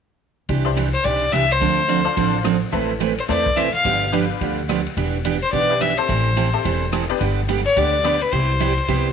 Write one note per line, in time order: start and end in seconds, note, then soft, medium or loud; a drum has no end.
0.49 0.94 C2 medium
0.49 0.69 C3 soft
0.49 0.69 E3 soft
0.49 0.69 D4 medium
0.49 0.69 G4 medium
0.49 kick soft
0.49 ride medium
0.65 0.75 D4 medium
0.65 0.75 E4 medium
0.65 0.75 G4 medium
0.65 0.76 C5 medium
0.76 0.87 C3 medium
0.76 0.88 E3 medium
0.76 0.88 D4 medium
0.76 0.88 G4 medium
0.76 hi-hat pedal medium
0.76 ride medium
0.94 1.06 C5 medium
0.94 ride soft
1.04 1.29 B1 medium
1.04 1.24 C3 medium
1.04 1.24 E3 medium
1.04 1.24 D4 medium
1.04 1.24 G4 medium
1.04 1.34 D5 medium
1.04 kick soft
1.04 ride medium
1.32 1.57 C2 medium
1.32 1.43 C3 medium
1.32 1.44 E3 medium
1.32 1.44 D4 medium
1.32 1.44 G4 medium
1.32 1.53 E5 loud
1.32 cross-stick medium
1.32 hi-hat pedal medium
1.32 ride medium
1.51 2.35 C5 medium
1.51 ride soft
1.60 2.06 D2 medium
1.60 1.80 D3 soft
1.60 1.80 F3 medium
1.60 1.80 C4 medium
1.60 1.81 D4 medium
1.60 1.81 A4 medium
1.60 kick soft
1.60 ride medium
1.88 1.99 D3 medium
1.88 2.00 F3 medium
1.88 2.00 C4 medium
1.88 2.00 D4 medium
1.88 2.00 A4 medium
1.88 hi-hat pedal medium
1.88 ride medium
2.05 2.42 D4 medium
2.05 2.42 F4 medium
2.05 2.42 A4 medium
2.05 2.42 C5 medium
2.16 2.62 A1 medium
2.16 2.36 D3 medium
2.16 2.36 F3 medium
2.16 2.36 C4 medium
2.16 2.36 D4 medium
2.16 2.36 A4 medium
2.16 kick soft
2.16 ride medium
2.44 2.55 D3 medium
2.44 2.56 F3 medium
2.44 2.56 C4 medium
2.44 2.56 D4 medium
2.44 2.56 A4 medium
2.44 cross-stick medium
2.44 hi-hat pedal medium
2.44 ride medium
2.72 3.18 A1 medium
2.72 2.92 E3 medium
2.72 2.92 A3 medium
2.72 2.92 C4 medium
2.72 2.88 C4 medium
2.72 2.92 E4 medium
2.72 2.88 E4 medium
2.72 2.88 A4 medium
2.72 2.92 B4 medium
2.72 2.88 B4 medium
2.72 kick soft
2.72 ride medium
3.00 3.11 E3 medium
3.00 3.12 A3 medium
3.00 3.12 C4 medium
3.00 3.12 E4 medium
3.00 3.12 B4 medium
3.00 hi-hat pedal medium
3.00 ride medium
3.18 3.24 C5 medium
3.18 ride medium
3.28 3.74 E2 medium
3.28 3.48 E3 medium
3.28 3.48 A3 medium
3.28 3.44 C4 medium
3.28 3.48 C4 medium
3.28 3.48 E4 medium
3.28 3.44 E4 soft
3.28 3.44 A4 soft
3.28 3.48 B4 medium
3.28 3.44 C5 medium
3.28 3.58 D5 medium
3.28 kick soft
3.28 snare soft
3.46 kick medium
3.56 3.67 E3 medium
3.56 3.68 A3 medium
3.56 3.68 C4 medium
3.56 3.68 E4 medium
3.56 3.68 B4 medium
3.56 3.73 E5 medium
3.56 cross-stick medium
3.56 hi-hat pedal medium
3.56 ride medium
3.74 4.10 F5 loud
3.74 ride soft
3.84 4.30 G1 medium
3.84 4.04 D3 soft
3.84 4.04 F3 medium
3.84 4.04 B3 medium
3.84 4.04 D4 medium
3.84 4.05 G4 medium
3.84 kick soft
3.84 ride medium
4.12 4.24 D3 medium
4.12 4.24 F3 medium
4.12 4.24 B3 medium
4.12 4.54 D4 medium
4.12 4.24 D4 medium
4.12 4.54 F4 medium
4.12 4.54 G4 soft
4.12 4.24 G4 medium
4.12 4.54 B4 medium
4.12 hi-hat pedal medium
4.12 ride medium
4.41 4.86 D2 medium
4.41 4.60 D3 medium
4.41 4.60 F3 soft
4.41 4.60 B3 medium
4.41 4.61 D4 medium
4.41 4.61 G4 medium
4.41 kick soft
4.41 ride medium
4.69 4.80 D3 medium
4.69 4.80 F3 medium
4.69 4.80 B3 medium
4.69 4.80 D4 medium
4.69 4.80 G4 medium
4.69 cross-stick medium
4.69 hi-hat pedal medium
4.69 ride medium
4.86 ride soft
4.97 5.42 E1 medium
4.97 5.16 E3 soft
4.97 5.16 B3 medium
4.97 5.17 D4 medium
4.97 5.17 G4 medium
4.97 kick soft
4.97 ride medium
5.25 5.36 E3 medium
5.25 5.36 B3 medium
5.25 5.36 D4 medium
5.25 5.36 G4 medium
5.25 hi-hat pedal medium
5.25 ride medium
5.42 5.52 C5 medium
5.42 ride soft
5.52 5.98 B1 medium
5.52 5.72 E3 medium
5.52 5.72 B3 medium
5.52 5.72 D4 medium
5.52 5.72 G4 medium
5.52 5.83 D5 medium
5.52 kick soft
5.52 ride medium
5.70 5.79 D4 medium
5.70 5.80 E4 medium
5.70 5.80 G4 medium
5.70 5.80 B4 medium
5.81 5.92 E3 medium
5.81 5.92 B3 medium
5.81 5.92 D4 medium
5.81 5.92 G4 medium
5.81 5.99 E5 medium
5.81 cross-stick medium
5.81 hi-hat pedal medium
5.81 ride medium
5.98 6.07 C4 medium
5.98 6.08 E4 medium
5.98 6.08 G4 medium
5.98 6.08 A4 medium
5.98 6.82 C5 medium
6.08 6.54 A1 medium
6.08 6.28 E3 medium
6.08 6.28 G3 soft
6.08 6.28 C4 medium
6.08 6.28 E4 medium
6.08 6.28 A4 medium
6.08 kick soft
6.08 ride medium
6.36 6.47 E3 medium
6.36 6.48 G3 medium
6.36 6.48 C4 medium
6.36 6.48 E4 medium
6.36 6.48 A4 medium
6.36 hi-hat pedal medium
6.36 ride medium
6.53 6.63 C4 medium
6.53 6.63 E4 medium
6.53 6.64 G4 medium
6.53 6.63 A4 medium
6.64 7.10 E1 medium
6.64 6.84 E3 medium
6.64 6.84 G3 medium
6.64 6.84 C4 medium
6.64 6.84 E4 medium
6.64 6.84 A4 medium
6.64 kick soft
6.64 ride medium
6.92 7.03 E3 medium
6.92 7.03 G3 medium
6.92 7.04 C4 medium
6.92 7.04 E4 medium
6.92 7.04 A4 medium
6.92 cross-stick medium
6.92 hi-hat pedal medium
6.92 ride medium
7.09 7.19 B3 medium
7.09 7.19 D4 medium
7.09 7.20 G4 medium
7.09 7.20 B4 medium
7.09 ride soft
7.20 7.65 G1 medium
7.20 7.40 D3 medium
7.20 7.40 G3 medium
7.20 7.40 B3 medium
7.20 7.40 D4 medium
7.20 7.40 G4 medium
7.20 kick soft
7.20 ride medium
7.48 7.59 D3 medium
7.48 7.60 G3 medium
7.48 7.60 B3 medium
7.48 7.60 D4 medium
7.48 7.60 G4 medium
7.48 hi-hat pedal medium
7.48 ride medium
7.65 7.79 C#5 loud
7.65 ride soft
7.76 8.21 D2 medium
7.76 7.96 D3 medium
7.76 7.96 G3 medium
7.76 7.96 B3 medium
7.76 7.96 D4 medium
7.76 7.96 G4 medium
7.76 8.23 D5 medium
7.76 kick soft
7.76 ride medium
8.04 8.15 D3 medium
8.04 8.15 G3 medium
8.04 8.19 B3 medium
8.04 8.15 B3 medium
8.04 8.20 D4 medium
8.04 8.16 D4 medium
8.04 8.20 G4 medium
8.04 8.16 G4 medium
8.04 8.20 B4 medium
8.04 cross-stick medium
8.04 hi-hat pedal medium
8.04 ride medium
8.22 8.33 B4 medium
8.22 ride soft
8.32 8.77 C2 medium
8.32 8.52 C3 medium
8.32 8.52 G3 soft
8.32 8.52 B3 medium
8.32 8.52 E4 medium
8.32 8.52 G4 medium
8.32 9.13 C5 medium
8.32 kick soft
8.32 ride medium
8.60 8.71 C3 medium
8.60 8.71 G3 medium
8.60 8.71 B3 medium
8.60 8.72 E4 medium
8.60 8.72 G4 medium
8.60 hi-hat pedal medium
8.60 ride medium
8.78 ride soft
8.88 9.12 C2 medium
8.88 9.08 C3 medium
8.88 9.08 G3 medium
8.88 9.08 B3 medium
8.88 9.08 E4 medium
8.88 9.08 G4 medium
8.88 kick soft
8.88 ride medium